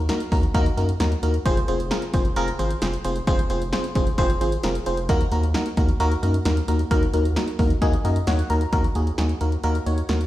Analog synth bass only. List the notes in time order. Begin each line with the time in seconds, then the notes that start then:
Already playing: D#2
0.32 D#2
0.54 D#2
0.77 F#2
1.00 D#2
1.23 D#2
1.46 F1
1.68 F1
2.14 F1
2.36 F1
2.59 G#1
2.82 F1
3.05 F1
3.27 F1
3.50 F1
3.95 F1
4.18 F1
4.41 G#1
4.64 F1
4.86 F1
5.09 D#2
5.32 D#2
5.77 D#2
6.00 D#2
6.23 F#2
6.46 D#2
6.68 D#2
6.91 D#2
7.14 D#2
7.59 D#2
7.82 D#2
8.05 F#2
8.27 D#2
8.50 D#2
8.73 D#2
8.95 D#2
9.18 D#2
9.41 D#2
9.64 D#2
9.86 D#2
10.09 D#2